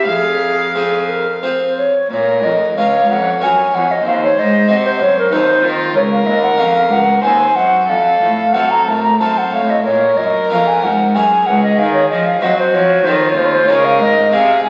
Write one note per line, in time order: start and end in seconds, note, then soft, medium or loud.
0.05 1.90 F2 medium
0.05 1.86 F2 soft
0.05 0.69 G#4 medium
0.05 1.39 F5 medium
0.74 1.24 C4 soft
0.74 1.24 F4 soft
0.74 1.11 G#4 medium
0.74 1.24 G#4 soft
1.09 1.42 A#4 medium
1.43 1.92 C4 soft
1.43 1.92 F4 soft
1.43 1.92 G#4 soft
1.43 1.76 C5 medium
1.78 2.10 C#5 medium
2.10 2.44 A#2 medium
2.10 2.41 A#2 soft
2.10 2.73 A#4 medium
2.10 2.45 C#5 medium
2.43 2.76 F2 medium
2.43 2.73 F2 soft
2.43 2.76 D#5 medium
2.76 3.08 C#2 medium
2.76 3.07 C#2 soft
2.76 3.24 C#4 soft
2.76 3.24 F4 soft
2.76 3.25 A#4 soft
2.76 3.41 C#5 medium
2.76 3.09 F5 medium
3.08 3.40 F2 medium
3.08 3.39 F2 soft
3.08 3.45 F#5 medium
3.40 3.70 F#2 medium
3.40 3.72 F#2 medium
3.40 3.70 C#4 soft
3.40 4.01 F#4 soft
3.40 4.01 A#4 soft
3.40 4.04 C#5 medium
3.40 3.76 G#5 medium
3.73 4.04 F2 medium
3.73 4.02 F2 soft
3.73 3.93 F#5 medium
3.91 4.06 D#5 medium
4.04 4.36 D#2 medium
4.04 4.34 D#2 medium
4.04 5.30 C5 medium
4.04 4.12 F5 medium
4.23 4.41 C#5 medium
4.37 4.68 G#2 medium
4.37 4.66 G#2 medium
4.37 4.70 D#5 medium
4.68 4.97 C3 medium
4.68 5.02 C3 medium
4.68 5.14 C4 soft
4.68 5.14 F#4 soft
4.68 5.15 C5 soft
4.68 4.76 D#5 medium
4.85 4.91 C5 medium
5.00 5.29 F#2 medium
5.00 5.34 F#2 medium
5.00 5.16 C#5 medium
5.19 5.34 A#4 medium
5.32 5.60 D#2 medium
5.32 5.63 D#2 medium
5.32 5.90 C4 soft
5.32 5.64 D#4 medium
5.32 5.91 F4 soft
5.32 5.91 A4 soft
5.32 5.67 C5 medium
5.63 5.94 D#3 medium
5.63 5.92 D#3 medium
5.63 5.96 F4 medium
5.94 6.22 C#2 medium
5.94 6.25 C#2 medium
5.94 7.24 A#4 medium
5.94 6.02 C#5 medium
6.12 6.28 F5 medium
6.25 6.54 D#2 medium
6.25 6.57 D#2 medium
6.25 6.42 D#5 medium
6.43 6.61 F#5 medium
6.58 6.87 F2 medium
6.58 6.92 F2 medium
6.58 7.04 C#4 soft
6.58 7.04 F4 soft
6.58 7.05 A#4 medium
6.58 6.90 F5 medium
6.89 7.19 C#2 medium
6.89 7.23 C#2 medium
6.89 7.22 F#5 medium
7.22 7.52 D#2 soft
7.22 7.55 D#2 medium
7.22 7.85 C4 soft
7.22 7.88 C5 medium
7.22 7.85 C5 soft
7.22 7.57 G#5 medium
7.55 7.85 F#2 soft
7.55 7.90 F#2 medium
7.55 7.91 F#5 medium
7.88 8.18 F2 soft
7.88 8.21 F2 medium
7.88 8.47 A4 medium
7.88 8.54 F5 medium
8.21 8.51 A2 soft
8.21 8.53 A2 medium
8.53 8.86 F#2 medium
8.53 8.84 F#2 soft
8.53 9.01 C4 soft
8.53 9.02 F4 soft
8.53 9.02 A4 soft
8.53 8.89 A4 medium
8.53 8.72 F#5 medium
8.71 8.86 A#5 medium
8.86 9.17 A2 soft
8.86 9.21 A2 medium
8.86 9.20 A#4 medium
8.86 9.03 A5 medium
9.03 9.19 A#5 medium
9.19 9.52 F#2 medium
9.19 9.50 F#2 soft
9.19 9.68 C4 soft
9.19 9.68 F4 soft
9.19 9.68 A4 soft
9.19 9.55 C5 medium
9.19 9.39 A5 medium
9.38 9.53 F#5 medium
9.53 9.84 A2 medium
9.53 9.82 A2 soft
9.53 9.84 C#5 medium
9.53 9.72 F5 medium
9.70 9.85 D#5 medium
9.85 10.17 A#2 medium
9.85 10.15 A#2 medium
9.85 11.16 A#4 medium
9.85 10.19 C#5 medium
10.17 10.47 F#2 medium
10.17 10.50 F#2 medium
10.17 10.51 D#5 medium
10.50 10.80 F2 medium
10.50 10.85 F2 medium
10.50 10.97 C#4 soft
10.50 10.97 F4 soft
10.50 10.98 A#4 soft
10.50 10.69 F5 medium
10.68 10.85 G#5 medium
10.82 11.12 G#2 medium
10.82 11.17 G#2 medium
10.82 11.17 F#5 medium
11.15 11.44 F#2 medium
11.15 11.47 F#2 medium
11.15 11.75 C#4 soft
11.15 11.75 F#4 soft
11.15 12.43 G#4 medium
11.15 11.76 A#4 soft
11.15 11.48 G#5 medium
11.46 11.76 C#2 medium
11.46 11.79 C#2 medium
11.46 11.62 F#5 medium
11.63 11.80 D#5 medium
11.79 12.08 D#3 medium
11.79 12.10 D#3 medium
11.79 11.93 F5 medium
11.93 12.09 C#5 medium
12.10 12.40 F3 medium
12.10 12.42 F3 medium
12.10 12.27 D#5 medium
12.26 12.44 F5 medium
12.42 12.71 F#3 medium
12.42 12.73 F#3 medium
12.42 12.88 C4 soft
12.42 12.88 F#4 soft
12.42 13.08 F#4 medium
12.42 12.88 C5 medium
12.42 12.58 D#5 medium
12.59 12.76 C5 medium
12.74 13.05 F3 medium
12.74 13.03 F3 medium
12.74 13.06 C#5 medium
13.04 13.36 D#3 medium
13.04 13.35 D#3 medium
13.04 13.65 C4 soft
13.04 13.71 F4 medium
13.04 13.65 F4 soft
13.04 13.66 A4 soft
13.04 13.14 C5 medium
13.13 13.22 C#5 medium
13.20 13.31 C5 medium
13.29 13.39 C#5 medium
13.36 13.65 D#2 medium
13.36 13.68 D#2 medium
13.36 13.47 C5 medium
13.46 13.54 C#5 medium
13.53 13.68 C5 medium
13.67 13.97 C#3 medium
13.67 14.01 C#3 medium
13.67 14.28 G#3 medium
13.67 14.28 F4 soft
13.67 14.28 G#4 medium
13.67 14.35 A#4 medium
13.67 13.86 C#5 loud
13.85 14.00 F5 medium
13.99 14.28 G#2 medium
13.99 14.31 G#2 medium
13.99 14.31 D#5 medium
14.31 14.60 C3 medium
14.31 14.63 C3 medium
14.31 14.69 C4 soft
14.31 14.69 F4 medium
14.31 14.69 G#4 soft
14.31 14.69 G#4 medium
14.31 14.63 F5 loud
14.63 14.69 G#2 medium
14.63 14.69 G#5 loud